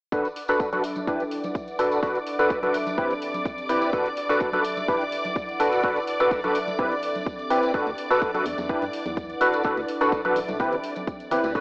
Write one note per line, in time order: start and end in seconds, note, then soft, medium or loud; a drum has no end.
0.12 1.22 D4 medium
0.12 0.27 D4 medium
0.12 0.28 F#4 medium
0.12 0.27 A4 medium
0.12 0.28 B4 medium
0.12 11.60 D5 medium
0.12 11.60 D6 medium
0.12 kick loud
0.12 closed hi-hat medium
0.12 tambourine medium
0.25 closed hi-hat soft
0.25 tambourine soft
0.36 1.22 E5 medium
0.36 open hi-hat loud
0.45 0.69 D4 medium
0.45 0.69 F#4 medium
0.45 1.22 A4 medium
0.45 0.69 A4 medium
0.45 0.69 B4 loud
0.45 closed hi-hat soft
0.45 tambourine medium
0.60 kick loud
0.60 closed hi-hat medium
0.60 tambourine medium
0.72 0.82 D4 medium
0.72 0.82 F#4 medium
0.72 0.82 A4 medium
0.72 0.82 B4 medium
0.72 closed hi-hat soft
0.72 tambourine soft
0.72 high conga medium
0.84 2.26 E4 medium
0.84 open hi-hat medium
0.95 closed hi-hat soft
0.95 tambourine medium
0.95 high conga medium
1.07 1.23 D4 medium
1.07 1.23 E4 medium
1.07 1.23 G4 medium
1.07 1.23 B4 medium
1.07 kick loud
1.07 closed hi-hat medium
1.07 tambourine medium
1.20 2.26 F#5 medium
1.20 closed hi-hat soft
1.20 tambourine soft
1.27 2.26 B4 medium
1.31 open hi-hat medium
1.44 closed hi-hat soft
1.44 tambourine medium
1.44 high conga medium
1.55 kick loud
1.55 closed hi-hat medium
1.55 tambourine medium
1.68 closed hi-hat soft
1.68 tambourine soft
1.79 3.36 D4 medium
1.79 2.00 D4 medium
1.79 2.00 F#4 medium
1.79 2.00 A4 medium
1.79 2.00 B4 medium
1.79 open hi-hat medium
1.92 closed hi-hat soft
1.92 tambourine medium
2.03 2.18 D4 medium
2.03 2.18 F#4 medium
2.03 2.18 A4 medium
2.03 2.18 B4 medium
2.03 kick loud
2.03 closed hi-hat medium
2.03 tambourine medium
2.12 3.37 A4 medium
2.12 3.36 E5 medium
2.12 closed hi-hat soft
2.12 tambourine soft
2.27 open hi-hat loud
2.39 2.59 D4 medium
2.39 2.59 F#4 medium
2.39 2.59 A4 medium
2.39 2.59 B4 loud
2.39 closed hi-hat soft
2.39 tambourine medium
2.50 kick loud
2.50 closed hi-hat medium
2.50 tambourine medium
2.62 2.77 D4 medium
2.62 2.77 F#4 medium
2.62 2.77 A4 medium
2.62 2.77 B4 medium
2.62 closed hi-hat soft
2.62 tambourine soft
2.62 high conga medium
2.74 open hi-hat medium
2.87 closed hi-hat soft
2.87 tambourine medium
2.87 high conga medium
2.97 3.93 C4 medium
2.97 3.13 C4 medium
2.97 3.13 E4 medium
2.97 3.13 G4 medium
2.97 3.13 B4 medium
2.97 kick loud
2.97 closed hi-hat medium
2.97 tambourine medium
3.11 closed hi-hat soft
3.11 tambourine soft
3.22 open hi-hat loud
3.34 closed hi-hat soft
3.34 tambourine medium
3.34 high conga medium
3.41 3.93 G4 medium
3.41 4.22 D5 medium
3.46 kick loud
3.46 closed hi-hat medium
3.46 tambourine medium
3.58 closed hi-hat soft
3.58 tambourine soft
3.69 3.91 C4 medium
3.69 3.91 E4 medium
3.69 3.90 G4 medium
3.69 3.90 B4 medium
3.69 open hi-hat medium
3.82 closed hi-hat soft
3.82 tambourine medium
3.93 4.08 D4 medium
3.93 5.03 D4 medium
3.93 4.08 F#4 medium
3.93 4.08 A4 medium
3.93 4.08 B4 loud
3.93 kick loud
3.93 closed hi-hat medium
3.93 tambourine medium
4.06 closed hi-hat soft
4.06 tambourine soft
4.17 open hi-hat loud
4.26 4.50 D4 medium
4.26 4.50 F#4 medium
4.26 5.03 A4 medium
4.26 4.50 A4 medium
4.26 4.50 B4 loud
4.26 5.03 E5 medium
4.26 closed hi-hat soft
4.26 tambourine medium
4.41 kick loud
4.41 closed hi-hat medium
4.41 tambourine medium
4.52 4.63 D4 medium
4.52 4.63 F#4 medium
4.52 4.63 A4 medium
4.52 4.63 B4 medium
4.52 closed hi-hat soft
4.52 tambourine soft
4.52 high conga medium
4.64 6.07 E4 medium
4.64 open hi-hat loud
4.77 closed hi-hat soft
4.77 tambourine medium
4.77 high conga medium
4.88 5.04 D4 medium
4.88 5.04 E4 medium
4.88 5.04 G4 medium
4.88 5.04 B4 loud
4.88 kick loud
4.88 closed hi-hat medium
4.88 tambourine medium
5.01 closed hi-hat soft
5.01 tambourine soft
5.07 6.07 B4 medium
5.07 6.07 F#5 medium
5.12 open hi-hat loud
5.25 closed hi-hat soft
5.25 tambourine medium
5.25 high conga medium
5.35 kick loud
5.35 closed hi-hat medium
5.35 tambourine medium
5.49 closed hi-hat soft
5.49 tambourine soft
5.60 5.81 D4 medium
5.60 7.18 D4 medium
5.60 5.81 F#4 medium
5.60 5.81 A4 medium
5.60 5.81 B4 medium
5.60 open hi-hat loud
5.72 closed hi-hat soft
5.72 tambourine medium
5.83 5.99 D4 medium
5.83 5.99 F#4 medium
5.83 5.99 A4 medium
5.83 7.18 A4 medium
5.83 5.99 B4 medium
5.83 kick loud
5.83 closed hi-hat medium
5.83 tambourine medium
5.96 closed hi-hat soft
5.96 tambourine soft
6.07 open hi-hat loud
6.14 7.17 E5 medium
6.20 6.40 D4 medium
6.20 6.40 F#4 medium
6.20 6.40 A4 medium
6.20 6.40 B4 loud
6.20 closed hi-hat soft
6.20 tambourine medium
6.31 kick loud
6.31 closed hi-hat medium
6.31 tambourine medium
6.44 6.58 D4 medium
6.44 6.58 F#4 medium
6.44 6.58 A4 medium
6.44 6.58 B4 medium
6.44 closed hi-hat soft
6.44 tambourine soft
6.44 high conga medium
6.55 open hi-hat loud
6.68 closed hi-hat soft
6.68 tambourine medium
6.68 high conga medium
6.79 7.74 C4 medium
6.79 6.94 C4 medium
6.79 6.94 E4 medium
6.79 6.94 G4 medium
6.79 6.94 B4 medium
6.79 kick loud
6.79 closed hi-hat medium
6.79 tambourine medium
6.91 closed hi-hat soft
6.91 tambourine soft
7.03 open hi-hat loud
7.15 closed hi-hat soft
7.15 tambourine medium
7.15 high conga soft
7.22 7.74 G4 medium
7.22 8.03 D5 medium
7.26 kick loud
7.26 closed hi-hat medium
7.26 tambourine medium
7.39 closed hi-hat soft
7.39 tambourine soft
7.50 7.71 C4 medium
7.50 7.71 E4 medium
7.50 7.71 G4 medium
7.50 7.71 B4 medium
7.50 open hi-hat loud
7.63 closed hi-hat soft
7.63 tambourine medium
7.74 8.84 D4 medium
7.74 7.89 D4 medium
7.74 7.89 F#4 medium
7.74 7.89 A4 medium
7.74 7.89 B4 loud
7.74 kick loud
7.74 closed hi-hat medium
7.74 tambourine medium
7.87 7.94 D2 medium
7.87 closed hi-hat soft
7.87 tambourine soft
7.98 open hi-hat loud
8.06 8.84 A4 medium
8.06 8.84 E5 medium
8.10 8.31 D4 medium
8.10 8.31 F#4 medium
8.10 8.31 A4 medium
8.10 8.31 B4 loud
8.10 closed hi-hat soft
8.10 tambourine medium
8.22 kick loud
8.22 closed hi-hat medium
8.34 8.44 D4 medium
8.34 8.44 F#4 medium
8.34 8.44 A4 medium
8.34 8.44 B4 medium
8.34 closed hi-hat soft
8.34 tambourine soft
8.34 high conga soft
8.45 8.54 E2 medium
8.45 9.88 E4 medium
8.45 open hi-hat medium
8.58 8.74 E2 medium
8.58 9.88 B4 medium
8.58 closed hi-hat soft
8.58 tambourine medium
8.58 high conga medium
8.66 8.85 D4 medium
8.66 8.85 E4 medium
8.66 8.85 G4 medium
8.66 8.85 B4 loud
8.66 9.88 F#5 medium
8.66 kick loud
8.66 closed hi-hat medium
8.70 tambourine medium
8.82 8.90 G2 medium
8.82 closed hi-hat soft
8.82 tambourine soft
8.93 open hi-hat loud
9.06 9.35 E2 medium
9.06 closed hi-hat soft
9.06 tambourine medium
9.06 high conga medium
9.17 kick loud
9.17 closed hi-hat medium
9.17 tambourine medium
9.30 closed hi-hat soft
9.30 tambourine soft
9.41 10.98 D4 medium
9.41 9.62 D4 medium
9.41 9.62 F#4 medium
9.41 9.62 A4 medium
9.41 9.62 B4 medium
9.41 open hi-hat medium
9.53 closed hi-hat soft
9.53 tambourine medium
9.63 9.80 D4 medium
9.63 9.80 F#4 medium
9.63 9.80 A4 medium
9.63 9.80 B4 loud
9.63 kick loud
9.63 closed hi-hat medium
9.63 tambourine medium
9.77 9.85 D2 medium
9.77 closed hi-hat soft
9.77 tambourine soft
9.88 open hi-hat loud
9.95 10.99 A4 medium
9.95 10.98 E5 medium
10.01 10.21 D4 medium
10.01 10.21 F#4 medium
10.01 10.21 A4 medium
10.01 10.21 B4 loud
10.01 closed hi-hat soft
10.01 tambourine medium
10.12 kick loud
10.12 closed hi-hat medium
10.12 tambourine medium
10.25 10.39 D4 medium
10.25 10.39 F#4 medium
10.25 10.39 A4 medium
10.25 10.39 B4 medium
10.25 closed hi-hat soft
10.25 tambourine soft
10.25 high conga medium
10.36 10.45 A1 medium
10.36 open hi-hat medium
10.48 10.64 C2 medium
10.48 closed hi-hat soft
10.48 tambourine medium
10.48 high conga medium
10.60 11.55 C4 medium
10.60 10.75 C4 medium
10.60 10.75 E4 medium
10.60 10.75 G4 medium
10.60 10.75 B4 loud
10.60 kick loud
10.60 closed hi-hat medium
10.60 tambourine medium
10.72 10.80 G1 loud
10.72 closed hi-hat soft
10.72 tambourine soft
10.84 open hi-hat medium
10.96 closed hi-hat soft
10.96 tambourine medium
10.96 high conga soft
11.03 11.55 G4 medium
11.03 11.60 D5 medium
11.07 kick loud
11.07 closed hi-hat medium
11.07 tambourine medium
11.20 closed hi-hat soft
11.20 tambourine soft
11.31 11.40 G1 medium
11.31 11.52 C4 medium
11.31 11.52 E4 medium
11.31 11.52 G4 medium
11.31 11.52 B4 medium
11.31 open hi-hat medium
11.44 11.59 D2 medium
11.44 closed hi-hat soft
11.44 tambourine medium
11.55 11.60 D4 medium
11.55 11.60 F#4 medium
11.55 11.60 A4 medium
11.55 11.60 B4 medium
11.55 kick loud
11.55 closed hi-hat medium
11.55 tambourine medium